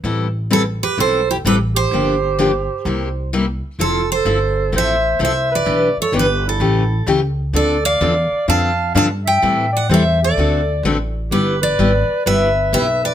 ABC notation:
X:1
M:4/4
L:1/8
Q:"Swing" 1/4=128
K:Am
V:1 name="Steel-string acoustic guitar"
z2 A B c G B c- | c6 z2 | A c3 e2 e d- | d ^c B A3 z2 |
d f3 a2 a g- | g ^f e d3 z2 | B d3 e2 e d |]
V:2 name="Clarinet"
z2 E G A E G G- | G6 z2 | F A3 c2 c B- | B A G E3 z2 |
A d3 f2 f e- | e d c A3 z2 | G B3 B2 B B |]
V:3 name="Steel-string acoustic guitar"
[E,G,CEA] z [E,G,CEA] z [E,G,CEA] z [E,G,CEA] z | [D,F,_B,DG] z [D,F,B,DG] z [C,G,B,EG] z [C,G,B,EG] z | [F,CEA] z [F,CEA] z [F,CEA] z [F,CEA] z | [E,B,DG] z [E,B,DG] z [^C,E,A,^CG] z [C,E,A,CG] z |
[D,F,CDA] z [D,F,CDA] z [D,F,CDA] z [D,F,CDA] z | [E,G,CEA] z [E,G,CEA] z [D,A,C^FA] z [D,A,CFA] z | [G,B,EG] z [G,B,EG] z [G,B,EG] z [G,B,EG] z |]
V:4 name="Upright bass" clef=bass
A,,,4 B,,,2 A,,,2 | G,,,4 C,,4 | F,,,2 G,,,2 A,,,2 C,,2 | B,,, z G,,,2 A,,,2 ^C,,2 |
D,,2 E,, z F,,2 G,,2 | A,,2 E,,2 D,,2 A,,,2 | G,,,2 ^G,,, z =G,,,2 B,,,2 |]